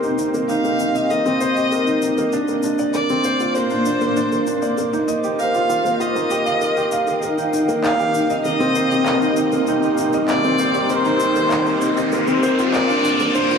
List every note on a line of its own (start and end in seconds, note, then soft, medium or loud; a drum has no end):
0.00 0.34 A#3 medium
0.00 1.26 C4 medium
0.00 3.31 C4 medium
0.00 0.04 D#4 medium
0.00 1.56 G4 medium
0.00 3.30 G4 medium
0.00 1.72 A#4 medium
0.00 4.78 A#4 medium
0.00 1.41 C5 medium
0.00 0.95 D#5 medium
0.00 2.32 D#5 medium
0.00 shaker soft
0.04 0.17 D#4 medium
0.19 0.28 D#4 medium
0.19 shaker medium
0.34 0.43 A#3 medium
0.34 shaker soft
0.49 0.64 D#4 medium
0.49 1.11 F5 medium
0.49 shaker soft
0.64 0.79 A#3 medium
0.64 shaker soft
0.80 0.95 D#4 medium
0.80 shaker medium
0.95 1.10 D#5 medium
0.95 shaker soft
1.10 1.25 A#3 medium
1.10 2.33 D#5 loud
1.10 shaker soft
1.26 1.40 C4 medium
1.26 shaker soft
1.41 1.56 C5 medium
1.41 shaker medium
1.56 1.71 G4 medium
1.56 shaker soft
1.72 1.86 A#4 medium
1.72 shaker soft
1.87 2.01 D#4 medium
1.87 shaker soft
2.02 2.11 D#4 medium
2.02 shaker medium
2.18 2.26 A#3 medium
2.18 shaker soft
2.32 5.75 A#3 medium
2.32 2.47 D4 loud
2.32 shaker soft
2.48 2.63 A#3 medium
2.48 shaker soft
2.63 2.78 D4 medium
2.63 shaker medium
2.79 2.93 D5 medium
2.79 shaker soft
2.93 3.09 A#3 medium
2.93 3.56 D5 loud
2.93 shaker soft
3.09 3.24 C4 medium
3.09 shaker soft
3.24 3.39 C5 loud
3.24 shaker medium
3.33 5.75 D6 medium
3.40 3.55 F4 medium
3.40 5.76 C5 medium
3.40 shaker soft
3.54 3.70 A#4 medium
3.54 4.77 C5 loud
3.54 shaker soft
3.70 3.85 D4 medium
3.70 shaker soft
3.86 3.95 D4 medium
3.86 shaker medium
4.01 4.10 A#3 medium
4.01 shaker soft
4.16 4.31 D4 loud
4.16 shaker soft
4.32 4.47 A#3 medium
4.32 shaker soft
4.47 4.62 D4 medium
4.47 shaker medium
4.62 4.77 D5 medium
4.62 shaker soft
4.77 4.92 A#3 medium
4.77 8.90 D#4 medium
4.77 shaker soft
4.93 5.08 D#4 medium
4.93 shaker soft
5.03 13.58 A#4 medium
5.08 5.23 D#5 loud
5.08 shaker medium
5.24 5.38 G4 medium
5.24 shaker soft
5.39 5.54 A#4 medium
5.39 6.02 F5 loud
5.39 8.80 F5 medium
5.39 shaker soft
5.54 5.68 F4 medium
5.54 shaker soft
5.69 5.78 F4 medium
5.69 9.18 G5 medium
5.69 shaker medium
5.85 5.94 A#3 medium
5.85 shaker soft
6.00 6.15 F4 medium
6.00 7.23 D#5 loud
6.00 shaker soft
6.15 6.30 A#3 medium
6.15 shaker soft
6.30 6.45 G4 medium
6.30 shaker medium
6.46 6.61 F5 medium
6.46 shaker soft
6.61 6.76 A#4 medium
6.61 shaker soft
6.77 6.91 G4 medium
6.77 shaker soft
6.92 7.01 F5 medium
6.92 shaker medium
7.07 7.16 A#4 medium
7.07 shaker soft
7.23 13.10 C4 medium
7.23 7.37 A#4 medium
7.23 riser medium
7.23 shaker soft
7.38 7.52 D#4 medium
7.38 shaker soft
7.53 7.62 D#4 medium
7.53 shaker medium
7.68 7.77 A#3 medium
7.68 shaker soft
7.83 7.98 D#4 medium
7.83 8.41 F5 loud
7.83 clap medium
7.83 shaker soft
7.94 13.11 G4 medium
7.99 8.14 G4 medium
7.99 shaker soft
8.14 8.29 D#4 medium
8.14 shaker medium
8.30 8.44 D#5 medium
8.30 shaker soft
8.45 8.60 A#3 medium
8.45 9.63 D#5 loud
8.45 shaker soft
8.60 8.75 C4 medium
8.60 shaker soft
8.75 8.90 C5 medium
8.75 shaker medium
8.91 12.13 D#4 medium
8.91 9.06 G4 medium
8.91 shaker soft
9.06 9.21 A#4 medium
9.06 clap medium
9.06 shaker soft
9.22 9.36 D#4 medium
9.22 shaker soft
9.37 9.46 D#4 medium
9.37 shaker medium
9.52 9.61 A#3 medium
9.52 shaker soft
9.67 9.82 D#4 loud
9.67 shaker soft
9.83 9.98 G4 medium
9.83 shaker soft
9.98 10.13 D#4 medium
9.98 shaker medium
10.13 10.28 D#5 loud
10.13 shaker soft
10.28 10.44 A#3 medium
10.28 10.91 D5 loud
10.28 clap medium
10.28 shaker soft
10.44 10.59 C4 medium
10.44 shaker soft
10.59 10.74 C5 medium
10.59 shaker medium
10.74 10.89 G4 medium
10.74 shaker soft
10.89 11.05 A#4 medium
10.89 12.12 C5 loud
10.89 shaker soft
11.05 11.19 D#4 medium
11.05 shaker soft
11.20 11.29 D#4 medium
11.20 shaker medium
11.36 11.45 A#3 loud
11.36 shaker soft
11.51 11.66 D#4 loud
11.51 clap medium
11.51 shaker soft
11.66 11.81 G4 medium
11.66 shaker soft
11.81 11.96 D#4 medium
11.81 shaker medium
11.97 12.12 D#5 loud
11.97 shaker soft
12.12 13.58 A#3 medium
12.12 12.27 A#3 medium
12.12 shaker soft
12.27 12.42 C4 medium
12.27 shaker soft
12.43 12.58 C5 loud
12.43 shaker medium
12.59 12.73 F4 medium
12.59 shaker soft
12.73 12.89 A#4 medium
12.73 13.58 C5 medium
12.73 13.36 D5 loud
12.73 clap medium
12.73 shaker soft
12.89 13.03 D4 medium
12.89 shaker soft
13.05 13.13 D4 medium
13.05 shaker medium
13.20 13.29 A#3 loud
13.20 13.58 D5 medium
13.20 shaker soft
13.35 13.50 D4 medium
13.35 13.58 C5 loud
13.35 shaker soft
13.51 13.58 F4 medium
13.51 shaker soft